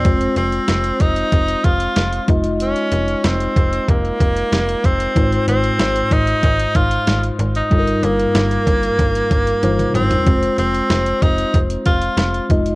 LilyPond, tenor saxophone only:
\new Staff \with { instrumentName = "Tenor saxophone" } { \time 4/4 \key f \dorian \tempo 4 = 94 c'8 c'4 ees'4 f'4 r8 | des'4 c'4 bes4. c'8~ | c'8 c'4 ees'4 f'8. r8 ees'16~ | ees'8 bes2. c'8~ |
c'8 c'4 ees'8 r8 f'4 r8 | }